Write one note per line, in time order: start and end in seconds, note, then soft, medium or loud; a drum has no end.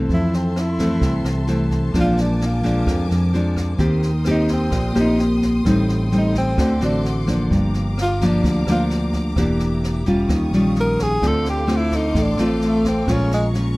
0.00 0.52 E3 medium
0.00 0.52 A3 medium
0.00 0.52 C4 medium
0.09 0.98 F2 medium
0.09 1.00 F2 medium
0.09 1.93 A4 medium
0.09 1.93 E5 medium
0.09 3.77 A5 medium
0.09 1.93 C6 medium
0.09 kick medium
0.09 snare soft
0.14 0.37 E4 medium
0.33 0.61 C4 medium
0.33 snare soft
0.56 1.27 E4 medium
0.56 cross-stick medium
0.56 snare soft
0.79 1.45 E3 medium
0.79 1.46 A3 medium
0.79 1.46 C4 medium
0.79 kick soft
0.79 snare soft
1.01 1.23 C2 loud
1.01 1.92 C3 medium
1.01 kick medium
1.01 snare soft
1.25 1.91 C2 medium
1.25 cross-stick medium
1.25 snare soft
1.47 1.91 E3 medium
1.47 1.91 A3 soft
1.47 1.91 C4 medium
1.47 snare soft
1.71 kick soft
1.71 snare soft
1.94 2.83 A#1 medium
1.94 2.85 A#2 soft
1.94 2.61 F3 medium
1.94 2.61 G#3 soft
1.94 2.61 D4 medium
1.94 3.78 A#4 medium
1.94 3.79 G#5 medium
1.94 3.79 D6 medium
1.94 kick medium
1.94 cross-stick medium
1.94 snare soft
2.00 2.22 F4 medium
2.17 2.47 D4 medium
2.17 snare soft
2.41 snare soft
2.45 3.13 F4 medium
2.63 3.30 F3 medium
2.63 3.30 G#3 medium
2.63 3.30 D4 medium
2.63 kick soft
2.63 snare soft
2.87 3.78 F2 medium
2.87 3.09 F2 loud
2.87 kick medium
2.87 cross-stick medium
2.87 snare soft
3.11 3.77 F2 medium
3.11 snare soft
3.33 3.76 F3 medium
3.33 3.77 G#3 medium
3.33 3.77 D4 medium
3.33 snare soft
3.56 kick soft
3.56 cross-stick medium
3.56 snare soft
3.78 4.68 D#2 loud
3.78 4.70 D#3 medium
3.78 4.09 A#3 medium
3.78 4.10 C4 medium
3.78 4.10 G4 medium
3.78 5.64 A#4 medium
3.78 5.63 G5 medium
3.78 6.56 C6 medium
3.78 6.56 D#6 medium
3.78 kick medium
3.78 snare soft
4.02 snare soft
4.24 4.92 A#3 medium
4.24 4.93 C4 medium
4.24 4.93 G4 medium
4.24 cross-stick medium
4.24 snare soft
4.31 4.51 D#4 medium
4.48 kick soft
4.48 snare soft
4.53 4.95 C4 medium
4.71 4.94 A#1 loud
4.71 5.62 A#2 soft
4.71 kick medium
4.71 snare soft
4.95 5.62 A#1 medium
4.95 5.62 A#3 medium
4.95 5.62 C4 medium
4.95 5.62 G4 medium
4.95 cross-stick medium
4.95 snare soft
5.00 5.20 D#4 medium
5.19 snare soft
5.42 kick soft
5.42 snare soft
5.64 6.54 A1 medium
5.64 6.56 A2 medium
5.64 6.09 G3 medium
5.64 6.09 C4 medium
5.64 6.09 D#4 medium
5.64 7.49 A4 medium
5.64 6.57 G5 medium
5.64 kick medium
5.64 cross-stick medium
5.64 snare soft
5.89 snare soft
6.12 6.57 G3 medium
6.12 6.57 C4 medium
6.12 6.57 D#4 medium
6.12 snare soft
6.18 6.37 D#4 medium
6.34 6.80 C4 medium
6.34 kick soft
6.34 snare soft
6.58 6.80 D2 medium
6.58 7.49 D3 medium
6.58 6.72 A3 soft
6.58 6.72 C4 medium
6.58 6.72 F#4 medium
6.58 7.51 F#5 medium
6.58 7.50 C6 medium
6.58 7.51 D6 medium
6.58 kick medium
6.58 cross-stick medium
6.58 snare soft
6.81 7.47 A1 medium
6.81 7.24 A3 medium
6.81 7.24 C4 medium
6.81 7.05 D4 medium
6.81 7.25 F#4 medium
6.81 snare soft
7.05 snare soft
7.27 7.93 F3 medium
7.27 7.94 A#3 medium
7.27 7.94 D4 medium
7.27 kick soft
7.27 cross-stick medium
7.27 snare soft
7.50 8.40 G1 medium
7.50 8.41 G2 medium
7.50 11.18 G4 medium
7.50 9.35 F5 medium
7.50 10.27 A#5 medium
7.50 10.27 D6 medium
7.50 kick medium
7.50 snare soft
7.74 snare soft
7.98 cross-stick medium
7.98 snare soft
8.02 8.22 F4 medium
8.21 8.64 F3 medium
8.21 8.64 A#3 medium
8.21 8.65 D4 medium
8.21 kick soft
8.21 snare soft
8.26 8.67 D4 medium
8.44 8.65 D2 medium
8.44 9.35 D3 medium
8.44 kick medium
8.44 snare soft
8.67 9.33 D2 medium
8.67 9.34 F3 medium
8.67 9.34 A#3 medium
8.67 9.34 D4 medium
8.67 cross-stick medium
8.67 snare soft
8.71 8.84 F4 medium
8.90 snare soft
9.13 kick soft
9.13 snare soft
9.36 10.25 E1 medium
9.36 10.06 E3 medium
9.36 10.03 A#3 medium
9.36 10.03 D4 medium
9.36 10.04 G4 medium
9.36 10.29 E5 medium
9.36 kick medium
9.36 cross-stick medium
9.36 snare soft
9.59 snare soft
9.83 snare soft
10.06 10.49 G3 medium
10.06 10.49 C#4 medium
10.06 10.50 F4 medium
10.06 kick soft
10.06 snare soft
10.29 10.51 D#2 loud
10.29 11.20 D#3 medium
10.29 13.77 F5 medium
10.29 11.22 C#6 medium
10.29 11.22 D#6 medium
10.29 kick medium
10.29 cross-stick medium
10.29 snare soft
10.51 11.18 A#1 medium
10.51 11.19 G3 medium
10.51 11.19 C#4 medium
10.51 11.20 F4 medium
10.51 snare soft
10.75 snare soft
10.80 11.04 A#4 medium
10.99 11.28 G#4 loud
10.99 kick soft
10.99 cross-stick medium
10.99 snare soft
11.22 12.11 D2 medium
11.22 12.13 D3 medium
11.22 11.65 A3 medium
11.22 11.65 C4 medium
11.22 11.65 F4 medium
11.22 13.06 A4 medium
11.22 13.06 C6 medium
11.22 13.06 D6 medium
11.22 kick medium
11.22 snare soft
11.27 11.48 A4 loud
11.45 snare soft
11.49 11.78 G4 medium
11.67 12.14 A3 medium
11.67 12.14 C4 medium
11.67 12.14 F4 medium
11.67 cross-stick medium
11.67 snare soft
11.76 11.97 E4 medium
11.91 kick soft
11.91 snare soft
11.96 12.24 D#4 medium
12.15 12.36 A1 loud
12.15 13.05 A2 medium
12.15 kick medium
12.15 snare soft
12.22 12.42 D4 medium
12.38 13.04 A1 medium
12.38 13.04 A3 medium
12.38 13.05 C4 medium
12.38 13.05 F4 medium
12.38 cross-stick medium
12.38 snare soft
12.46 12.62 F3 soft
12.61 snare soft
12.67 12.87 A3 medium
12.84 13.14 C4 medium
12.84 kick soft
12.84 snare soft
13.07 13.77 A#1 medium
13.07 13.77 A#2 medium
13.07 13.51 G#3 medium
13.07 13.50 C#4 medium
13.07 13.51 F4 medium
13.07 13.77 G#4 medium
13.07 13.77 A#5 medium
13.07 13.77 C#6 medium
13.07 kick medium
13.07 cross-stick medium
13.07 snare soft
13.12 13.33 C#4 loud
13.31 13.47 G#3 medium
13.31 snare soft
13.54 13.77 G#3 medium
13.54 13.77 C#4 medium
13.54 13.77 F4 medium
13.54 snare soft